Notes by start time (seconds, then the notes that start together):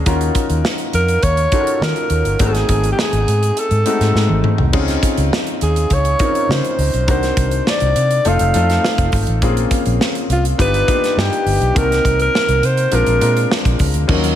0.06 D#2 C#4 D#4 F4 F#4 A#4, kick, closed hi-hat
0.21 closed hi-hat
0.35 kick, closed hi-hat
0.50 D#2, closed hi-hat
0.65 snare
0.78 closed hi-hat
0.93 F2 A#4, closed hi-hat
1.08 closed hi-hat
1.23 D#2 C#5, kick, closed hi-hat
1.37 closed hi-hat
1.52 C#4 D#4 F4 F#4 A4, kick, closed hi-hat
1.60 A#4
1.67 closed hi-hat
1.81 D#3 A#4, snare
1.96 closed hi-hat
2.10 D#2, closed hi-hat
2.25 G1, closed hi-hat
2.39 G#1 A3 B3 D#4 F#4 G#4, kick, closed hi-hat
2.46 C4
2.55 snare, closed hi-hat
2.69 G#1, kick, closed hi-hat
2.84 closed hi-hat
2.92 G4
2.99 G#4, snare
3.13 G#1, closed hi-hat
3.28 G#2, closed hi-hat
3.43 closed hi-hat
3.57 A4, closed hi-hat
3.71 G#2, closed hi-hat
3.86 G#3 A3 C4 D#4 F#4, closed hi-hat
4.00 G#2, snare, closed hi-hat
4.15 G#2, snare
4.29 G#1, high tom
4.44 mid tom
4.58 C2, floor tom
4.73 C#2 C4 C#4 D#4 F4 G#4, kick, crash
4.88 snare, closed hi-hat
5.03 kick, closed hi-hat
5.18 C#2, closed hi-hat
5.33 snare
5.47 closed hi-hat
5.61 D#2 G#4, closed hi-hat
5.76 closed hi-hat
5.90 C#2 C#5, kick, closed hi-hat
6.05 closed hi-hat
6.19 C4 C#4 D#4 F4 A#4, kick, closed hi-hat
6.35 closed hi-hat
6.49 C#3 C5, snare
6.65 closed hi-hat
6.78 C#2, open hi-hat
6.94 B1, closed hi-hat
7.07 C2 C4 D4 D#4 F#4 A#4 C5, kick, closed hi-hat
7.23 snare, closed hi-hat
7.37 C2, kick, closed hi-hat
7.51 closed hi-hat
7.67 D5, snare
7.80 C2, closed hi-hat
7.96 C3, closed hi-hat
8.11 closed hi-hat
8.25 F1 A3 C4 D#4 F4 A4 F5, closed hi-hat
8.39 F1, closed hi-hat
8.54 F2 A3 C4 D#4 F4 A4, closed hi-hat
8.70 snare, closed hi-hat
8.84 snare
8.98 F1, kick, closed hi-hat
9.12 G#1, kick, open hi-hat
9.27 A1, closed hi-hat
9.42 A#1 A#3 C4 C#4 F4 G#4, kick, closed hi-hat
9.57 closed hi-hat
9.71 kick, closed hi-hat
9.86 A#1, closed hi-hat
10.01 snare
10.15 closed hi-hat
10.29 C2 F4, closed hi-hat
10.45 closed hi-hat
10.58 G1 B3 D4 D#4 F4 G4 B4, kick, closed hi-hat
10.74 closed hi-hat
10.88 A#3 D4 D#4 F4 G4, kick, closed hi-hat
10.94 B3
11.04 snare, closed hi-hat
11.17 G2 G4, snare
11.33 closed hi-hat
11.46 G1, open hi-hat
11.61 B1, closed hi-hat
11.75 C2 A#3 C4 D#4 F#4 A4 A#4, kick, closed hi-hat
11.82 A#4
11.92 snare, closed hi-hat
12.05 C2, kick, closed hi-hat
12.20 A#4, closed hi-hat
12.35 snare
12.48 C2, closed hi-hat
12.63 C3 C5, closed hi-hat
12.77 closed hi-hat
12.91 A#1 G#3 C4 D4 F4 A#4, closed hi-hat
13.06 A#1, closed hi-hat
13.21 A#2 G#3 C4 D4 F4 A#4, closed hi-hat
13.37 closed hi-hat
13.51 snare
13.65 A#1, kick, closed hi-hat
13.79 C#2, kick, open hi-hat
13.94 D2, closed hi-hat
14.08 D#2 F3 C#4 D#4 F4 A#4, kick, crash
14.13 F#3
14.24 closed hi-hat